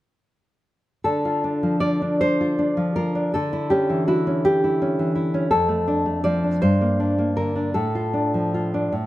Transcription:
1.04 3.28 D3 soft
1.04 1.79 A4 medium
1.25 1.80 F4 soft
1.44 2.01 D4 soft
1.63 2.76 F3 soft
1.80 2.40 F4 soft
1.80 2.18 D5 medium
2.02 2.57 D4 soft
2.21 2.92 C5 medium
2.41 2.95 F4 soft
2.59 3.14 D4 soft
2.77 3.33 F3 soft
2.96 3.33 F4 soft
2.96 3.31 A#4 medium
3.15 3.33 D4 soft
3.34 5.50 D3 soft
3.34 3.69 A4 medium
3.53 4.07 E4 soft
3.70 4.26 C#4 soft
3.70 4.05 G4 medium
3.90 4.98 E3 soft
4.08 4.63 E4 soft
4.08 4.42 F#4 medium
4.27 4.80 C#4 soft
4.45 5.49 G4 medium
4.64 5.14 E4 soft
4.82 5.33 C#4 soft
4.99 5.53 E3 soft
5.15 5.50 E4 soft
5.34 5.52 C#4 soft
5.51 6.58 F2 medium
5.51 6.21 A4 medium
5.69 6.05 A3 soft
5.88 6.42 D4 soft
6.06 6.62 A3 soft
6.24 6.62 F3 soft
6.24 6.60 D5 medium
6.44 6.62 D4 soft
6.62 7.73 G2 medium
6.62 7.35 C5 medium
6.81 7.17 A#3 soft
7.00 7.54 D4 soft
7.18 7.76 A#3 soft
7.37 7.75 D3 soft
7.37 7.74 A#4 medium
7.56 7.75 D4 soft
7.74 8.88 A2 soft
7.74 9.06 A4 medium
7.95 8.53 F4 soft
8.13 8.73 D4 soft
8.34 8.92 F3 soft
8.54 8.93 F4 soft
8.74 8.93 D4 soft
8.92 9.06 A2 soft

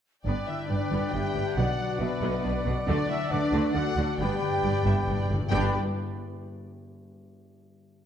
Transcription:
0.25 0.35 G1 soft
0.25 1.59 G2 soft
0.25 0.34 G2 medium
0.25 0.47 B3 soft
0.25 0.35 D4 medium
0.25 2.84 D4 soft
0.25 1.54 B4 soft
0.25 2.83 D5 soft
0.25 0.46 D5 soft
0.25 0.47 D5 medium
0.25 1.53 G5 soft
0.46 1.59 D3 soft
0.46 0.68 E4 medium
0.46 0.70 E5 soft
0.46 0.58 E5 soft
0.67 0.79 G1 soft
0.67 0.78 G2 soft
0.67 0.78 G3 soft
0.67 1.11 D4 medium
0.67 1.12 D4 soft
0.67 1.16 B4 soft
0.67 1.12 D5 medium
0.67 1.13 D5 soft
0.91 1.00 G1 medium
0.91 0.99 G2 medium
0.91 1.12 B3 medium
0.91 2.21 B4 soft
1.12 1.21 G1 soft
1.12 1.21 G2 soft
1.12 1.23 B3 soft
1.12 2.00 D4 soft
1.12 1.56 G4 medium
1.12 1.59 E5 medium
1.12 1.56 G5 medium
1.12 1.57 G5 medium
1.35 1.43 G1 soft
1.35 1.43 G2 soft
1.35 1.45 G3 soft
1.35 1.59 G4 soft
1.56 1.65 B1 medium
1.56 1.65 B2 medium
1.56 2.89 B2 soft
1.56 1.78 B3 soft
1.56 2.01 F#4 medium
1.56 2.00 D5 soft
1.56 4.16 D5 medium
1.56 1.99 F#5 medium
1.56 4.15 F#5 medium
1.56 2.01 F#5 medium
1.56 4.16 F#5 medium
1.79 4.21 F#3 soft
1.99 2.08 B1 soft
1.99 2.08 B2 soft
1.99 2.09 F#3 soft
1.99 2.65 B3 medium
1.99 2.43 D4 soft
1.99 2.65 B4 medium
1.99 2.43 E5 medium
2.22 2.30 B1 medium
2.22 2.30 B2 medium
2.22 2.43 B3 medium
2.22 2.89 B4 soft
2.44 2.52 B1 soft
2.44 2.53 B2 medium
2.44 2.54 B3 soft
2.44 3.29 D4 soft
2.44 3.32 D5 medium
2.66 2.74 B1 soft
2.66 2.74 B2 soft
2.66 2.74 F#3 medium
2.66 3.96 F#4 soft
2.86 2.96 D2 medium
2.86 2.95 D3 medium
2.86 4.22 D3 medium
2.86 3.08 A3 medium
2.86 3.07 D4 medium
2.86 5.28 D4 medium
2.86 4.56 D5 medium
2.86 3.08 D5 medium
3.07 4.21 A3 soft
3.07 3.18 E4 medium
3.07 3.30 E5 medium
3.07 3.31 E5 medium
3.29 3.40 D2 medium
3.29 3.39 D3 medium
3.29 3.40 F#3 soft
3.29 3.73 D4 medium
3.29 3.74 D4 soft
3.29 3.76 B4 medium
3.29 3.75 D5 medium
3.29 3.74 D5 medium
3.53 3.61 D2 medium
3.53 3.61 D3 medium
3.53 3.73 A3 medium
3.53 4.21 A4 medium
3.74 3.83 D2 soft
3.74 3.83 D3 medium
3.74 3.84 A3 medium
3.74 4.63 D4 soft
3.74 4.19 F#4 medium
3.74 4.19 A4 medium
3.74 4.18 F#5 medium
3.74 4.19 F#5 medium
3.97 4.05 D2 soft
3.97 4.05 D3 soft
3.97 4.07 F#3 medium
3.97 4.21 F#4 soft
4.19 4.27 G1 medium
4.19 4.25 G2 soft
4.19 5.47 G2 medium
4.19 4.28 G2 medium
4.19 4.41 B3 medium
4.19 5.32 G4 medium
4.19 5.28 B4 medium
4.19 5.29 D5 medium
4.19 5.28 G5 medium
4.19 4.59 G5 soft
4.19 5.28 G5 medium
4.19 5.28 B5 medium
4.26 4.33 G2 soft
4.34 4.41 G2 soft
4.41 4.49 G2 soft
4.41 5.54 D3 soft
4.50 4.56 G2 soft
4.57 4.64 G2 soft
4.63 4.71 G1 soft
4.63 4.72 G2 soft
4.63 4.71 G2 soft
4.63 4.73 G3 soft
4.63 5.07 D4 soft
4.63 4.84 D5 medium
4.72 4.79 G2 soft
4.80 4.86 G2 soft
4.85 4.93 G1 medium
4.85 4.94 G2 medium
4.85 5.06 B3 medium
4.85 5.51 B4 soft
4.85 4.95 E5 medium
4.95 5.01 G2 medium
5.02 5.09 G2 medium
5.08 5.16 G1 soft
5.08 5.17 G2 soft
5.08 5.16 G2 medium
5.08 5.17 B3 soft
5.08 5.51 D4 soft
5.08 5.50 D5 medium
5.17 5.24 G2 medium
5.25 5.32 G2 medium
5.30 5.38 G1 soft
5.30 5.38 G2 soft
5.30 5.39 G2 medium
5.30 5.39 G3 medium
5.30 5.51 G4 soft
5.40 5.47 G2 medium
5.47 5.77 G2 medium
5.47 5.77 G3 medium
5.47 5.76 D4 medium
5.47 5.77 D4 medium
5.47 5.70 D5 medium
5.51 5.77 G1 medium
5.51 5.76 G2 medium
5.51 5.72 G2 medium
5.51 5.76 B3 medium
5.51 5.71 D4 medium
5.51 5.71 G4 medium
5.51 5.77 G4 medium
5.51 5.76 D5 medium
5.51 5.70 G5 medium
5.51 5.76 G5 medium
5.51 5.77 G5 medium
5.51 5.78 B5 medium
5.56 5.77 B4 medium

